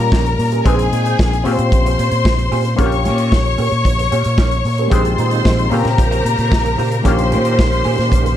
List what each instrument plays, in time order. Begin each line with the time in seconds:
Already playing: clav G3 A#3 C#4 F4, string section A#4 A#5
0.00 muted clean electric guitar stroke
0.12 fingered electric bass A#1, clean electric guitar C#4 G4 A#4, kick, snare
0.26 muted clean electric guitar stroke, closed hi-hat
0.39 fingered electric bass A#2, muted clean electric guitar stroke, open hi-hat
0.52 clean electric guitar C#4 G4 A#4, closed hi-hat
0.65 fingered electric bass A#1, clav G#3 C4 D#4 G#4, clean electric guitar D#4 G#4 C5, string section G#4 G#5, kick, closed hi-hat
0.79 closed hi-hat
0.92 fingered electric bass A#2, clean electric guitar D#4 G#4 C5, closed hi-hat
1.06 clean electric guitar D#4 G#4 C5, closed hi-hat
1.19 fingered electric bass A#1, kick, snare
1.33 muted clean electric guitar stroke, closed hi-hat
1.44 fingered electric bass A#2, clav C4 C#4 F4 G4, clean electric guitar C#4 G4 C5, string section C5 C6, open hi-hat
1.59 fingered electric bass A#2, muted clean electric guitar stroke, closed hi-hat
1.72 fingered electric bass A#1, muted clean electric guitar stroke, kick, closed hi-hat
1.86 clean electric guitar C#4 G4 C5, closed hi-hat
1.99 fingered electric bass A#2, clean electric guitar C#4 G4 C5, closed hi-hat
2.12 fingered electric bass A#2, muted clean electric guitar stroke, closed hi-hat
2.25 fingered electric bass A#1, muted clean electric guitar stroke, kick, snare
2.39 muted clean electric guitar stroke, closed hi-hat
2.52 fingered electric bass A#2, clean electric guitar C#4 G4 C5, open hi-hat
2.65 muted clean electric guitar stroke, closed hi-hat
2.77 fingered electric bass A#1, clav A#3 C#4 F4 F#4, clean electric guitar C#4 G4 A#4, string section C#5 C#6, kick, closed hi-hat
2.86 clav G4
2.92 closed hi-hat
3.05 fingered electric bass A#2, clean electric guitar C#4 G4 A#4, closed hi-hat
3.18 clean electric guitar C#4 G4 A#4, closed hi-hat
3.32 fingered electric bass A#1, muted clean electric guitar stroke, kick, snare
3.45 muted clean electric guitar stroke, closed hi-hat
3.58 fingered electric bass A#2, clean electric guitar C#4 G4 A#4, open hi-hat
3.71 fingered electric bass A#2, muted clean electric guitar stroke, closed hi-hat
3.85 fingered electric bass A#1, muted clean electric guitar stroke, kick, closed hi-hat
3.99 muted clean electric guitar stroke, closed hi-hat
4.12 fingered electric bass A#2, clean electric guitar C#4 G4 A#4, closed hi-hat
4.24 fingered electric bass A#2, muted clean electric guitar stroke, closed hi-hat
4.38 fingered electric bass A#1, clean electric guitar C#4 G4 A#4, kick, snare
4.52 muted clean electric guitar stroke, closed hi-hat
4.65 fingered electric bass A#2, muted clean electric guitar stroke, open hi-hat
4.78 clean electric guitar C#4 G4 A#4, closed hi-hat
4.90 fingered electric bass A#1, tonewheel organ D#3 G#3 C4 F4, clav G#3 C4 D#4 G4, clean electric guitar D#4 G#4 C5, string section C5 C6, kick, closed hi-hat
5.05 closed hi-hat
5.18 fingered electric bass A#2, clean electric guitar D#4 G#4 C5, closed hi-hat
5.31 clean electric guitar D#4 G#4 C5, closed hi-hat
5.45 fingered electric bass A#1, muted clean electric guitar stroke, kick, snare
5.59 muted clean electric guitar stroke, closed hi-hat
5.70 fingered electric bass A#2, tonewheel organ C#3 A#3 G4 C5, clav C4 C#4 F4 G4, clean electric guitar C#4 G4 C5, string section A#4 A#5, open hi-hat
5.85 fingered electric bass A#2, muted clean electric guitar stroke, snare, closed hi-hat
5.98 fingered electric bass A#1, muted clean electric guitar stroke, kick, closed hi-hat
6.11 clean electric guitar C#4 G4 C5, closed hi-hat
6.25 fingered electric bass A#2, clean electric guitar C#4, closed hi-hat
6.38 fingered electric bass A#2, muted clean electric guitar stroke, closed hi-hat
6.52 fingered electric bass A#1, muted clean electric guitar stroke, kick, snare
6.65 muted clean electric guitar stroke, closed hi-hat
6.78 fingered electric bass A#2, clean electric guitar C#4 G4 C5, open hi-hat
6.91 muted clean electric guitar stroke, closed hi-hat
7.04 fingered electric bass A#1, tonewheel organ D#3 A#3 C#4, clav A#3 C#4 F4 G4, clean electric guitar C#4 G4 A#4, string section C5 C6, kick, closed hi-hat
7.19 closed hi-hat
7.32 fingered electric bass A#2, clean electric guitar C#4 G4 A#4, closed hi-hat
7.44 clean electric guitar C#4 G4 A#4, closed hi-hat
7.59 fingered electric bass A#1, kick, snare
7.71 muted clean electric guitar stroke, closed hi-hat
7.84 fingered electric bass A#2, clean electric guitar C#4 G4 A#4, open hi-hat
7.98 fingered electric bass A#2, muted clean electric guitar stroke, snare, closed hi-hat
8.12 fingered electric bass A#1, muted clean electric guitar stroke, kick, closed hi-hat
8.24 muted clean electric guitar stroke, closed hi-hat